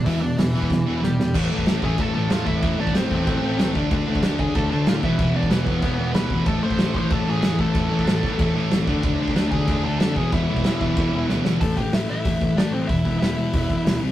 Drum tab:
CC |----------------|x---x---x---x---|x---x---x---x---|x---x---x---x---|
HH |o---o-----------|----------------|----------------|----------------|
SD |----o---o---o-o-|----o-------o---|----o-------o---|----o-------o---|
BD |o------oo-------|o--o--o-o-----o-|o--o--o-o-----o-|o--o--o-o-----o-|

CC |x---x---x---x---|x---x---x---x---|x---x---x---x---|x---x---x---x---|
HH |----------------|----------------|----------------|----------------|
SD |----o-------o---|----o-------o---|----o-------o---|----o-------o---|
BD |o--o--o-o-----o-|o--o--o-o-----o-|o--o--o-o-----o-|o--o--o-o-----o-|

CC |x---x---x-------|----------------|----------------|
HH |----------------|o---o---o---o---|o---o---o---o---|
SD |----o-------o-o-|----o-------o---|----o-------o---|
BD |o--o--o-o-------|o-o-----o-o-----|o-o-----o-o-----|